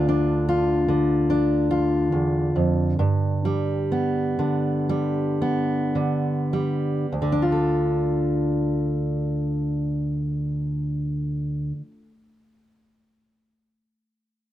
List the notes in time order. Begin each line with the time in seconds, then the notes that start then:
Already playing: D2 D3 F4
0.09 D4
0.49 F4
0.88 D3
1.30 D4
1.71 F4
2.12 E2
2.56 F2
2.99 G2
3.45 G3
3.92 B3
4.39 D3
4.89 G3
5.42 B3
5.95 D3
6.53 G3
7.12 D2
7.22 D3
7.32 D4
7.42 F4
7.52 A4